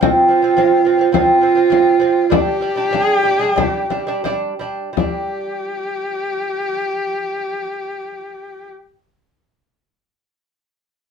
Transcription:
0.01 F3 C4, frame drum
0.05 F4
0.28 F3 C4, frame drum
0.42 F3 C4
0.57 F3 C4, frame drum
0.85 F3 C4, frame drum
0.99 F3 C4
1.12 F3 C4 F4, frame drum
1.41 F3 C4
1.55 F3 C4
1.70 F3 C4, frame drum
2.00 F3 C4, frame drum
2.30 G3 D4 G4, frame drum
2.61 G3 D4, frame drum
2.76 G3 D4
2.91 G3 D4, frame drum
3.01 G#4
3.19 G4
3.23 G3 D4, frame drum
3.39 G3 D4 G#4
3.56 G3 D4 G4, frame drum
3.90 G3 D4, frame drum
4.07 G3 D4
4.24 G3 D4, frame drum
4.59 G3 D4, frame drum
4.93 G3 G4
4.97 D4, frame drum

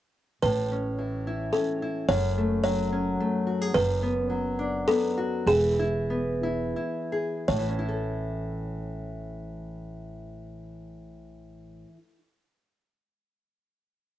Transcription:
0.42 A1 A2 B4
0.72 C#4
0.98 E3
1.27 E4
1.53 C#4 A4
1.82 E4
2.09 F#1 F#2 C#5
2.38 A3
2.64 F#3 C#5
2.92 C#4
3.20 A3
3.47 F#4
3.62 G#4
3.74 F#1 F#2 B4
4.03 B3
4.30 F#3
4.59 D4
4.88 B3 A4
5.18 F#4
5.46 E1 E3 G#4
5.79 E4
6.10 B3
6.43 E4
6.76 E4
7.12 G#4
7.48 A1 A2 C#5
7.59 E3
7.69 C#4
7.79 E4
7.89 A4

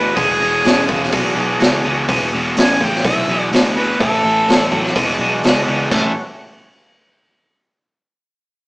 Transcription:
Already playing: D2 E2 B2 G#3 D4 F#4 B4
0.15 E1 E2 B2 D4 F#4 G#4, kick, open hi-hat
0.41 E1 E2 B2
0.64 E1 E2 C#3, snare, open hi-hat
0.88 E1 E2 C#3, kick
1.03 snare
1.12 B1 E2 B2, kick, open hi-hat
1.35 B1 E2 B2
1.59 C#2 E2 B2, snare, open hi-hat
1.84 C#2 E2 B2
2.08 E1 E2 B2, kick, open hi-hat
2.33 E1 E2 B2
2.57 A1 E2 C#3 G#5, snare, open hi-hat
2.80 A1 E2 C#3 G5, kick
2.95 snare
3.04 B1 E2 B2 E5, kick, open hi-hat
3.28 B1 E2 B2
3.51 D2 E2 B2, snare, open hi-hat
3.76 E2 B2 B4
3.99 A1 A2 E3 B3 C#4 G4 A4, kick, open hi-hat
4.23 A1 A2 E3
4.48 A1 A2 F#3, snare, open hi-hat
4.72 A1 A2 F#3, kick
4.86 snare
4.95 E1 E2 B2 G#3 D4 F#4, kick, open hi-hat
5.19 B1 E2 B2
5.44 C#2 E2 B2, snare, open hi-hat
5.67 C#2 E2 B2
5.90 A1 A2 E3 G3 A3 B3 C#4 F#4 A4, kick, crash

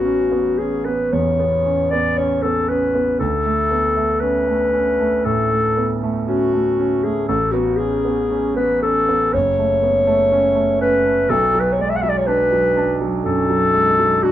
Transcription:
Already playing: A1 B3 C#4 F#4
0.05 C#4
0.32 B3
0.58 C#4 G#4
0.85 B3 B4
1.12 E2 C#5
1.39 B3
1.66 C#4
1.91 B3 D5
2.17 C#4 C#5
2.42 B3 A4
2.69 C#4 B4
2.95 B3
3.19 D2 A4
3.46 A3
3.71 B3
3.97 A3
4.20 C#4 B4
4.48 A3
4.73 C#4
5.00 A3
5.25 A2 A4
5.51 A3
5.77 B3
6.03 A3
6.28 C#4 F#4
6.54 A3
6.79 C#4
7.03 A3 G#4
7.28 A1 A4
7.52 B3 F#4
7.77 C#4 G#4
8.05 B3
8.30 C#4
8.56 B3 B4
8.82 C#4 A4
9.09 B3
9.33 F#1 C#5
9.58 A3
9.83 B3
10.07 A3
10.32 C#4
10.55 A3
10.81 C#4 B4
11.06 A3
11.30 B1 A4
11.54 F#3
11.60 B4
11.73 C#5
11.79 G#3 D5
11.89 E5
11.96 F#5
12.02 F#3 E5
12.09 D5
12.18 C#5
12.26 D4 B4
12.52 F#3
12.77 D4
13.01 F#3
13.24 F#2 A4
13.50 F#3
13.74 G#3
13.99 F#3
14.23 D4 F#4

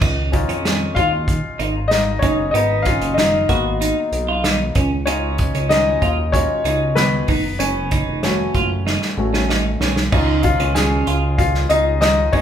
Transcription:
0.01 C#2 D#4, kick, splash
0.32 C#4 D#4 F4, kick, closed hi-hat
0.49 F2 C#4, closed hi-hat
0.65 C#4, snare, closed hi-hat
0.95 D#2 F4 F5, kick, closed hi-hat
1.28 kick, closed hi-hat
1.59 G#1 D#4, closed hi-hat
1.88 D#4 D#5, snare, closed hi-hat
2.19 F#1 C#4 D#4 C#5, kick, closed hi-hat
2.51 G#1 B3 D#5, closed hi-hat
2.55 D#4
2.82 C#4 F4 F5, kick, closed hi-hat
3.01 F#1, closed hi-hat
3.14 D#4 D#5, snare, closed hi-hat
3.49 G#1 A#3 B3 F#4, kick, closed hi-hat
3.81 D#4, closed hi-hat
4.12 B1, closed hi-hat
4.29 F4
4.44 D#4, snare, closed hi-hat
4.75 C#2 C#4, kick, closed hi-hat
5.06 C#4 D#4 F4 C#5, closed hi-hat
5.38 kick, closed hi-hat
5.54 C#2 C#4, closed hi-hat
5.69 C#4 D#4 D#5, snare, closed hi-hat
6.02 D#2 F4, kick, closed hi-hat
6.32 C#4 D#4 F4 C#5, kick, closed hi-hat
6.65 C#2 D#4, closed hi-hat
6.95 B3 B4, snare, closed hi-hat
7.28 F#1 D#4, kick, open hi-hat
7.59 F#1 C#4 C#5, closed hi-hat
7.91 D#4, kick, closed hi-hat
8.07 F1
8.23 A3 C#4 F#4, snare, closed hi-hat
8.54 F#1 F4, kick, closed hi-hat
8.87 D#4, snare
9.02 snare
9.17 A1 A3 C#4 F#4
9.34 C#4, snare
9.49 D#4, snare
9.80 B1 C#4, snare
9.96 snare
10.12 C#2 C#4 D#4 F4, kick, crash
10.43 F4 F5, kick, closed hi-hat
10.59 C#2 C#4, closed hi-hat
10.75 C#4 G#4 G#5, snare, closed hi-hat
11.07 C#2 F4, closed hi-hat
11.38 F4 F5, kick, closed hi-hat
11.54 snare
11.69 C#2 D#4 D#5, closed hi-hat
12.01 D#4 D#5, snare, closed hi-hat
12.32 F#1 C#4 D#4 C#5, kick, open hi-hat

